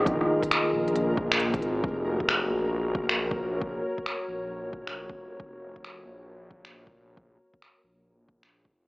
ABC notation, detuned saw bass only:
X:1
M:4/4
L:1/8
Q:"Swing 16ths" 1/4=135
K:Gblyd
V:1 name="Detuned saw bass" clef=bass
B,,, z2 B,,,4 A,,, | F,,,3 B,,,4- B,,,- | B,,, z2 B,,,4 F,,, | F,,,3 B,,,4- B,,,- |
B,,, z2 B,,,4 F,,, |]